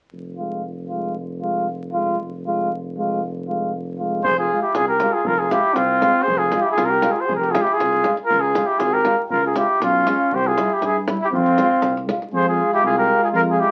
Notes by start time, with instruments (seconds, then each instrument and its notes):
0.12 tuba F1
0.37 euphonium G#3, trombone F4
0.89 euphonium G#3, trombone F4
1.41 euphonium G#3, trombone F4
1.92 euphonium G#3, trombone F4
2.19 tuba F1
2.46 euphonium G#3, trombone F4
2.96 euphonium G#3, trombone F4
3.48 euphonium G#3, trombone F4
3.98 euphonium G#3, trombone F4
4.24 tuba F1, flugelhorn G#4, trumpet C5, davul low
4.38 flugelhorn F4, trumpet G#4
4.51 euphonium G#3, trombone F4
4.62 flugelhorn E4, trumpet G4
4.74 tuba C2, flugelhorn F4, trumpet G#4, davul high
4.88 flugelhorn G4, trumpet A#4
5.00 euphonium G#3, trombone F4, davul high
5.13 flugelhorn F4, trumpet G#4
5.24 tuba F1, flugelhorn F4, trumpet A#4, davul low
5.37 flugelhorn F4, trumpet G#4
5.49 euphonium G#3, flugelhorn E4, trombone F4, trumpet G4, davul high
5.74 tuba C2, flugelhorn C4, trumpet F4, davul high
6.02 euphonium G#3, trombone F4, davul high
6.22 tuba F1, flugelhorn G#4, trumpet C5
6.28 davul low
6.38 flugelhorn F4, trumpet G#4
6.52 euphonium G#3, trombone F4, davul high
6.62 flugelhorn E4, trumpet G4
6.71 trumpet G#4
6.76 tuba C2, flugelhorn F4, davul high
6.85 trumpet A#4
6.90 flugelhorn G4
7.02 euphonium G#3, trombone F4, davul high
7.11 flugelhorn F4, trumpet G#4
7.20 trumpet C5
7.26 tuba F1, flugelhorn G#4, davul low
7.36 flugelhorn G4, trumpet A#4
7.43 davul high
7.51 euphonium G#3, flugelhorn F4, trombone F4, trumpet G#4, davul high
7.61 flugelhorn E4, trumpet G4
7.67 davul high
7.73 flugelhorn F4, trumpet G#4
7.79 tuba C2, davul high
7.93 davul high
8.04 euphonium G#3, trombone F4, davul high
8.17 davul high
8.25 flugelhorn F4, trumpet A#4
8.30 tuba C#2, davul low
8.40 flugelhorn F4, trumpet G#4
8.54 euphonium G#3, trombone F4, davul high
8.66 flugelhorn E4, trumpet G4
8.78 tuba G#1, flugelhorn F4, trumpet G#4, davul high
8.91 flugelhorn G4, trumpet A#4
9.05 euphonium G#3, trombone F4, davul high
9.18 flugelhorn G4, trumpet A#4
9.30 tuba C#2, flugelhorn F4, trumpet A#4, davul low
9.45 flugelhorn F4, trumpet G#4
9.56 euphonium G#3, flugelhorn E4, trombone F4, trumpet G4, davul high
9.80 tuba B1, flugelhorn C#4, trumpet F4, davul high
10.05 euphonium G#3, trombone F4, davul high
10.31 tuba C2, flugelhorn G4, trumpet C5, davul low
10.47 flugelhorn F4, trumpet G#4
10.57 euphonium G3, trombone E4, davul high
10.73 flugelhorn E4, trumpet G4
10.81 tuba G2, davul high
10.85 flugelhorn E4, trumpet G#4
11.08 euphonium G3, trombone E4, davul high
11.21 flugelhorn E4, trumpet G4
11.32 tuba F2, flugelhorn C4, trumpet F4, davul low
11.46 davul high
11.57 euphonium G#3, trombone F4, davul high
11.82 tuba C2, davul high
11.97 davul high
12.06 euphonium G#3, trombone F4, davul high
12.22 davul high
12.31 tuba F2, euphonium G#3, trombone F4, flugelhorn G#4, trumpet C5
12.48 flugelhorn F4, trumpet G#4
12.73 flugelhorn E4, trumpet G4
12.83 tuba C2, flugelhorn F4, trumpet G#4
12.96 flugelhorn G4, trumpet A#4
13.22 flugelhorn F4, trumpet G#4
13.32 tuba F2, flugelhorn F4, trumpet A#4
13.47 flugelhorn F4, trumpet G#4
13.60 flugelhorn E4, trumpet G4